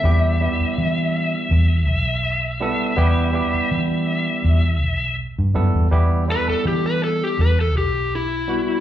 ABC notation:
X:1
M:4/4
L:1/16
Q:1/4=82
K:Em
V:1 name="Electric slide guitar"
e16- | e12 z4 | z2 B A G B A G B A G2 E4 |]
V:2 name="Tine electric piano"
[G,B,EG]2 [G,B,EG]6- [G,B,EG] z4 z [G,B,EA]2 | [G,B,EG]2 [G,B,EG]6- [G,B,EG] z4 z [G,B,EA]2 | [G,B,EG]2 [G,B,EA]6- [G,B,EA] z4 z [G,B,EF]2 |]
V:3 name="Fingered electric bass" clef=bass
E,,3 z E,4 E,,2 B,,,6 | E,,3 z E,4 E,,2 B,,,3 G,, F,, E,, | E,,3 z E,4 E,,2 B,,,6 |]